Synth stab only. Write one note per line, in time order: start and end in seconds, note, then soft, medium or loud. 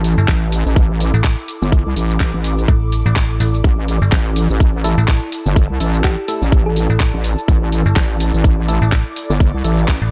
4.84 5.04 A3 loud
4.84 5.04 E4 medium
4.84 5.04 A4 loud
5.80 6.00 A3 medium
5.80 6.00 E4 medium
5.80 6.00 A4 medium
6.28 6.42 A3 medium
6.28 6.42 E4 medium
6.28 6.42 A4 loud
8.68 8.88 A3 loud
8.68 8.88 E4 medium
8.68 8.88 A4 loud
9.64 9.84 A3 medium
9.64 9.84 E4 medium
9.64 9.84 A4 medium